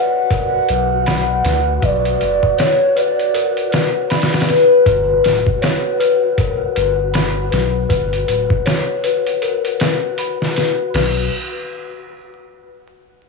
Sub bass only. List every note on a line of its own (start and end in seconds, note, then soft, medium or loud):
0.69 1.42 B1 medium
1.45 1.79 D2 loud
1.83 2.17 B1 loud
2.21 2.41 F#1 medium
4.86 5.21 G1 medium
5.25 5.44 D1 medium
6.77 7.49 G1 medium
7.52 7.87 B1 loud
7.90 8.25 G1 loud
8.28 8.48 D1 medium
10.94 11.29 B1 medium